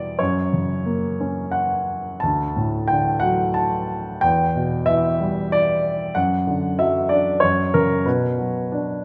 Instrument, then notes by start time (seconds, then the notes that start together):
grand piano
Already playing: E2 B2 E3 G3 D5 E5
0.19 F#2 C#5
0.53 C#3
0.86 A#3
1.21 C#4
1.51 F#5
2.20 D2 A5
2.56 A2
2.88 D3 G5
3.20 F#3 F#5
3.54 A5
4.21 E2 G5
4.55 B2
4.86 E3 E5
5.20 G3
5.52 D5
6.15 F#2 F#5
6.47 D3
6.78 F#3 E5
7.09 D4 D5
7.40 F#2 C#5
7.74 C#3 A#4
8.06 B2 B4
8.38 F#3
8.72 D4